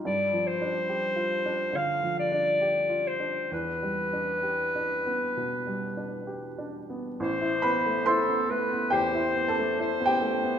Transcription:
<<
  \new Staff \with { instrumentName = "Clarinet" } { \time 4/4 \key a \minor \tempo 4 = 69 d''8 c''4. f''8 d''4 c''8 | b'2.~ b'8 r8 | c''4 a'8 b'8 c''4 c''4 | }
  \new Staff \with { instrumentName = "Grand piano" } { \time 4/4 \key a \minor r1 | r1 | r8 <b' b''>8 <c'' c'''>4 \tuplet 3/2 { <g' g''>4 <a' a''>8~ <a' a''>8 <g' g''>4 } | }
  \new Staff \with { instrumentName = "Grand piano" } { \time 4/4 \key a \minor \tuplet 3/2 { g,8 f8 d'8 g'8 f'8 d'8 d8 f8 d'8 g'8 f'8 d'8 } | \tuplet 3/2 { e,8 g8 d'8 g'8 d'8 b8 b,8 g8 d'8 g'8 d'8 b8 } | a,,16 e'16 b16 a16 e'16 b16 a16 b16 e,16 e'16 b16 a16 e'16 b16 a16 b16 | }
>>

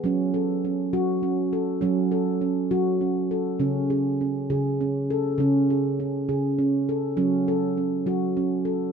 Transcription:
<<
  \new Staff \with { instrumentName = "Handpan" } { \time 6/8 \key fis \minor \tempo 4. = 67 cis'8 a'8 cis'8 fis'8 cis'8 a'8 | cis'8 a'8 cis'8 fis'8 cis'8 a'8 | cis'8 gis'8 cis'8 gis'8 cis'8 a'8 | cis'8 gis'8 cis'8 gis'8 cis'8 a'8 |
cis'8 a'8 cis'8 fis'8 cis'8 a'8 | }
  \new Staff \with { instrumentName = "Handpan" } { \clef bass \time 6/8 \key fis \minor fis4. fis4. | fis4. fis4. | cis4. cis4. | cis4. cis4. |
fis4. fis4. | }
>>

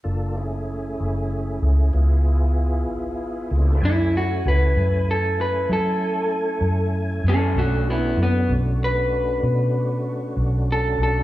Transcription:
<<
  \new Staff \with { instrumentName = "Clean electric guitar" } { \time 12/8 \key fis \minor \tempo 4. = 64 r1. | e'8 fis'8 b'4 a'8 b'8 a'2 r8 <cis' a'>8 | <a fis'>8 <b e'>8 b8 r8 b'2. a'8 a'8 | }
  \new Staff \with { instrumentName = "Tonewheel organ" } { \time 12/8 \key fis \minor << { r1. | <a b bis d' e' eis' g' a' b' bis' d''>8 r1 r4. | r1. | } \\ { <ais d' eis' a'>8 <a cis' e' gis'>2~ <a cis' e' gis'>8 <b e' eis' gis'>2. | <a cis' e' gis''>1. | <a cis' d' fis'>1. | } >> }
  \new Staff \with { instrumentName = "Fingered electric bass" } { \clef bass \time 12/8 \key fis \minor fis,,4. fis,,4 cis,8 cis,4. gis,,4 cis,8 | fis,4 cis,8 fis,4. fis4. fis,4 fis,8 | b,,4 fis,8 b,,4. b,4. b,,4 b,,8 | }
>>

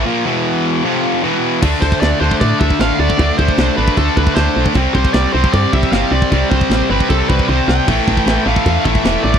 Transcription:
<<
  \new Staff \with { instrumentName = "Lead electric guitar" } { \time 4/4 \key d \dorian \tempo 4 = 153 r1 | r8 c''8 d''8 c''8 d''8 e''8 f''8 d''8~ | d''8 c''4 b'8 a'8 b'8 c''8. r16 | r8 c''8 d''8 c''8 d''8 e''8 f''8 d''8~ |
d''8 c''4 b'8 a'8 b'8 c''8 g''8~ | g''4. f''4 e''4 d''8 | }
  \new Staff \with { instrumentName = "Distorted electric guitar" } { \clef bass \time 4/4 \key d \dorian <ais, f ais>8 <e, b, e>4. <f, c f>4 <e, b, e>4 | <d a d'>4. <d a d'>4. <d a d'>4 | <d a d'>4. <d a d'>4. <d a d'>4 | <c g c'>4. <c g c'>4. <c g c'>4 |
<c g c'>4. <c g c'>4. <c g c'>4 | <a, e a>4. <a, e a>4. <a, e a>4 | }
  \new Staff \with { instrumentName = "Distorted electric guitar" } { \clef bass \time 4/4 \key d \dorian <ais, f ais>8 <e, b, e>4. <f, c f>4 <e, b, e>4 | <d a d'>4. <d a d'>2~ <d a d'>8 | <d a d'>4. <d a d'>2~ <d a d'>8 | <c g c'>4. <c g c'>2~ <c g c'>8 |
<c g c'>4. <c g c'>2~ <c g c'>8 | <a, e a>4. <a, e a>2~ <a, e a>8 | }
  \new Staff \with { instrumentName = "FM bass" } { \clef bass \time 4/4 \key d \dorian r1 | d,8 d,8 d,8 d,8 a,8 d,8 a,,8 d,8 | d,8 d,8 c,8 a,,8 d,8 d,8 d,8 b,,8 | c,8 c,8 c,8 c,8 g,8 c,8 g,,8 c,8 |
c,8 c,8 a,,8 g,,8 c,8 c,8 c,8 c,8 | a,,8 a,,8 a,,8 a,,8 e,8 a,,8 e,,8 a,,8 | }
  \new DrumStaff \with { instrumentName = "Drums" } \drummode { \time 4/4 r4 r4 r4 r4 | <cymc bd>8 bd16 bd16 <cymc sn>8. bd16 <cymc bd>8 bd16 bd16 <cymc sn>8. bd16 | <cymc bd>8 bd16 bd16 <cymc sn>8. bd16 <cymc bd>8 bd16 bd16 <cymc sn>8. bd16 | <cymc bd>8 bd16 bd16 <cymc sn>8. bd16 <cymc bd>8 bd16 bd16 <cymc sn>8. bd16 |
<cymc bd>8 bd16 bd16 <cymc sn>8. bd16 <cymc bd>8 bd16 bd16 tommh8 sn8 | <cymc bd>8 bd16 bd16 <cymc sn>8. bd16 <cymc bd>8 bd16 bd16 <cymc sn>8. bd16 | }
>>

